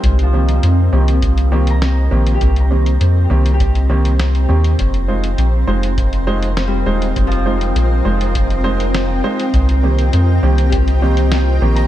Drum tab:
HH |xx-xx--xxx-xx--x|xx-xx--xxx-xxx-x|xx-xx--xxx-xx--x|xx-xx--xxx-xx--x|
SD |------------o---|------------o---|------------o---|------------o---|
BD |o-------o-------|o-------o-------|o-------o-------|o-------o-------|

HH |xx-xx--xxx-xx--x|
SD |------------o---|
BD |o-------o-------|